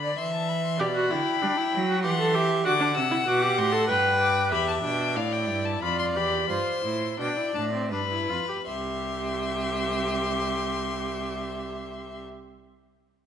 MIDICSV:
0, 0, Header, 1, 5, 480
1, 0, Start_track
1, 0, Key_signature, 0, "major"
1, 0, Tempo, 619835
1, 618, Time_signature, 3, 2, 24, 8
1, 3501, Tempo, 657895
1, 4941, Tempo, 710059
1, 5901, Tempo, 767263
1, 6381, Tempo, 786370
1, 9175, End_track
2, 0, Start_track
2, 0, Title_t, "Violin"
2, 0, Program_c, 0, 40
2, 0, Note_on_c, 0, 83, 84
2, 139, Note_on_c, 0, 84, 77
2, 151, Note_off_c, 0, 83, 0
2, 259, Note_off_c, 0, 84, 0
2, 262, Note_on_c, 0, 81, 72
2, 379, Note_on_c, 0, 83, 74
2, 391, Note_off_c, 0, 81, 0
2, 495, Note_off_c, 0, 83, 0
2, 499, Note_on_c, 0, 84, 76
2, 617, Note_on_c, 0, 83, 86
2, 629, Note_off_c, 0, 84, 0
2, 1572, Note_off_c, 0, 83, 0
2, 1577, Note_on_c, 0, 84, 92
2, 2043, Note_off_c, 0, 84, 0
2, 2058, Note_on_c, 0, 86, 93
2, 2290, Note_off_c, 0, 86, 0
2, 2296, Note_on_c, 0, 88, 86
2, 2537, Note_on_c, 0, 86, 91
2, 2549, Note_off_c, 0, 88, 0
2, 2781, Note_on_c, 0, 84, 101
2, 2792, Note_off_c, 0, 86, 0
2, 3013, Note_off_c, 0, 84, 0
2, 3017, Note_on_c, 0, 83, 92
2, 3253, Note_off_c, 0, 83, 0
2, 3259, Note_on_c, 0, 86, 86
2, 3495, Note_off_c, 0, 86, 0
2, 3500, Note_on_c, 0, 83, 100
2, 3615, Note_off_c, 0, 83, 0
2, 3619, Note_on_c, 0, 81, 89
2, 3665, Note_off_c, 0, 81, 0
2, 3738, Note_on_c, 0, 79, 92
2, 3971, Note_on_c, 0, 77, 91
2, 3982, Note_off_c, 0, 79, 0
2, 4089, Note_on_c, 0, 79, 90
2, 4100, Note_off_c, 0, 77, 0
2, 4327, Note_on_c, 0, 81, 92
2, 4337, Note_off_c, 0, 79, 0
2, 4448, Note_off_c, 0, 81, 0
2, 4454, Note_on_c, 0, 83, 99
2, 4571, Note_off_c, 0, 83, 0
2, 4574, Note_on_c, 0, 84, 86
2, 4623, Note_off_c, 0, 84, 0
2, 4698, Note_on_c, 0, 83, 87
2, 4940, Note_on_c, 0, 84, 94
2, 4951, Note_off_c, 0, 83, 0
2, 5411, Note_off_c, 0, 84, 0
2, 5416, Note_on_c, 0, 79, 81
2, 5651, Note_off_c, 0, 79, 0
2, 5654, Note_on_c, 0, 81, 86
2, 5708, Note_off_c, 0, 81, 0
2, 5904, Note_on_c, 0, 83, 86
2, 6373, Note_off_c, 0, 83, 0
2, 6381, Note_on_c, 0, 84, 85
2, 8548, Note_off_c, 0, 84, 0
2, 9175, End_track
3, 0, Start_track
3, 0, Title_t, "Violin"
3, 0, Program_c, 1, 40
3, 27, Note_on_c, 1, 74, 85
3, 139, Note_off_c, 1, 74, 0
3, 144, Note_on_c, 1, 76, 100
3, 622, Note_on_c, 1, 74, 84
3, 633, Note_off_c, 1, 76, 0
3, 857, Note_on_c, 1, 79, 83
3, 869, Note_off_c, 1, 74, 0
3, 1569, Note_off_c, 1, 79, 0
3, 1574, Note_on_c, 1, 78, 84
3, 1809, Note_off_c, 1, 78, 0
3, 1819, Note_on_c, 1, 76, 85
3, 2053, Note_on_c, 1, 78, 89
3, 2064, Note_off_c, 1, 76, 0
3, 3009, Note_on_c, 1, 79, 88
3, 3021, Note_off_c, 1, 78, 0
3, 3493, Note_off_c, 1, 79, 0
3, 3498, Note_on_c, 1, 76, 86
3, 3965, Note_on_c, 1, 74, 77
3, 3976, Note_off_c, 1, 76, 0
3, 4442, Note_off_c, 1, 74, 0
3, 4447, Note_on_c, 1, 74, 83
3, 4930, Note_off_c, 1, 74, 0
3, 4941, Note_on_c, 1, 72, 87
3, 5402, Note_off_c, 1, 72, 0
3, 5411, Note_on_c, 1, 74, 77
3, 5891, Note_off_c, 1, 74, 0
3, 5897, Note_on_c, 1, 71, 82
3, 6369, Note_off_c, 1, 71, 0
3, 6379, Note_on_c, 1, 76, 81
3, 8546, Note_off_c, 1, 76, 0
3, 9175, End_track
4, 0, Start_track
4, 0, Title_t, "Viola"
4, 0, Program_c, 2, 41
4, 614, Note_on_c, 2, 67, 97
4, 663, Note_off_c, 2, 67, 0
4, 735, Note_on_c, 2, 66, 97
4, 856, Note_on_c, 2, 64, 89
4, 868, Note_off_c, 2, 66, 0
4, 1098, Note_on_c, 2, 62, 91
4, 1109, Note_off_c, 2, 64, 0
4, 1218, Note_on_c, 2, 64, 89
4, 1230, Note_off_c, 2, 62, 0
4, 1451, Note_off_c, 2, 64, 0
4, 1456, Note_on_c, 2, 66, 89
4, 1569, Note_off_c, 2, 66, 0
4, 1574, Note_on_c, 2, 67, 98
4, 1622, Note_off_c, 2, 67, 0
4, 1695, Note_on_c, 2, 69, 97
4, 1816, Note_on_c, 2, 67, 106
4, 1828, Note_off_c, 2, 69, 0
4, 2048, Note_off_c, 2, 67, 0
4, 2053, Note_on_c, 2, 66, 108
4, 2101, Note_off_c, 2, 66, 0
4, 2168, Note_on_c, 2, 62, 93
4, 2229, Note_off_c, 2, 62, 0
4, 2407, Note_on_c, 2, 64, 100
4, 2456, Note_off_c, 2, 64, 0
4, 2525, Note_on_c, 2, 66, 103
4, 2645, Note_on_c, 2, 67, 99
4, 2657, Note_off_c, 2, 66, 0
4, 2885, Note_on_c, 2, 69, 104
4, 2897, Note_off_c, 2, 67, 0
4, 3004, Note_off_c, 2, 69, 0
4, 3008, Note_on_c, 2, 71, 100
4, 3499, Note_on_c, 2, 67, 87
4, 3510, Note_off_c, 2, 71, 0
4, 3728, Note_off_c, 2, 67, 0
4, 3732, Note_on_c, 2, 62, 82
4, 3968, Note_on_c, 2, 64, 78
4, 3979, Note_off_c, 2, 62, 0
4, 4450, Note_on_c, 2, 65, 79
4, 4461, Note_off_c, 2, 64, 0
4, 4694, Note_on_c, 2, 67, 85
4, 4705, Note_off_c, 2, 65, 0
4, 4939, Note_off_c, 2, 67, 0
4, 4944, Note_on_c, 2, 65, 78
4, 5170, Note_off_c, 2, 65, 0
4, 5174, Note_on_c, 2, 64, 72
4, 5407, Note_off_c, 2, 64, 0
4, 5415, Note_on_c, 2, 62, 68
4, 5532, Note_on_c, 2, 64, 74
4, 5542, Note_off_c, 2, 62, 0
4, 5651, Note_off_c, 2, 64, 0
4, 5655, Note_on_c, 2, 62, 70
4, 5773, Note_off_c, 2, 62, 0
4, 5777, Note_on_c, 2, 60, 71
4, 5899, Note_off_c, 2, 60, 0
4, 5902, Note_on_c, 2, 62, 70
4, 5949, Note_off_c, 2, 62, 0
4, 6021, Note_on_c, 2, 64, 68
4, 6140, Note_on_c, 2, 65, 73
4, 6149, Note_off_c, 2, 64, 0
4, 6255, Note_off_c, 2, 65, 0
4, 6259, Note_on_c, 2, 67, 68
4, 6307, Note_off_c, 2, 67, 0
4, 6383, Note_on_c, 2, 67, 76
4, 8550, Note_off_c, 2, 67, 0
4, 9175, End_track
5, 0, Start_track
5, 0, Title_t, "Cello"
5, 0, Program_c, 3, 42
5, 0, Note_on_c, 3, 50, 78
5, 121, Note_off_c, 3, 50, 0
5, 138, Note_on_c, 3, 52, 78
5, 618, Note_on_c, 3, 47, 84
5, 630, Note_off_c, 3, 52, 0
5, 855, Note_off_c, 3, 47, 0
5, 860, Note_on_c, 3, 50, 75
5, 922, Note_off_c, 3, 50, 0
5, 1102, Note_on_c, 3, 55, 84
5, 1164, Note_off_c, 3, 55, 0
5, 1340, Note_on_c, 3, 54, 91
5, 1580, Note_on_c, 3, 52, 91
5, 1592, Note_off_c, 3, 54, 0
5, 2050, Note_off_c, 3, 52, 0
5, 2055, Note_on_c, 3, 50, 85
5, 2292, Note_on_c, 3, 48, 80
5, 2303, Note_off_c, 3, 50, 0
5, 2528, Note_off_c, 3, 48, 0
5, 2533, Note_on_c, 3, 47, 89
5, 2772, Note_on_c, 3, 45, 86
5, 2784, Note_off_c, 3, 47, 0
5, 3013, Note_on_c, 3, 43, 89
5, 3025, Note_off_c, 3, 45, 0
5, 3499, Note_on_c, 3, 40, 79
5, 3510, Note_off_c, 3, 43, 0
5, 3728, Note_off_c, 3, 40, 0
5, 3732, Note_on_c, 3, 47, 78
5, 3967, Note_on_c, 3, 45, 88
5, 3978, Note_off_c, 3, 47, 0
5, 4208, Note_on_c, 3, 43, 87
5, 4219, Note_off_c, 3, 45, 0
5, 4441, Note_off_c, 3, 43, 0
5, 4446, Note_on_c, 3, 41, 78
5, 4690, Note_on_c, 3, 40, 77
5, 4701, Note_off_c, 3, 41, 0
5, 4933, Note_off_c, 3, 40, 0
5, 4937, Note_on_c, 3, 43, 78
5, 4991, Note_off_c, 3, 43, 0
5, 5173, Note_on_c, 3, 45, 69
5, 5406, Note_off_c, 3, 45, 0
5, 5411, Note_on_c, 3, 47, 80
5, 5466, Note_off_c, 3, 47, 0
5, 5654, Note_on_c, 3, 45, 78
5, 5901, Note_on_c, 3, 43, 76
5, 5911, Note_off_c, 3, 45, 0
5, 6135, Note_off_c, 3, 43, 0
5, 6139, Note_on_c, 3, 41, 63
5, 6189, Note_off_c, 3, 41, 0
5, 6383, Note_on_c, 3, 36, 77
5, 8550, Note_off_c, 3, 36, 0
5, 9175, End_track
0, 0, End_of_file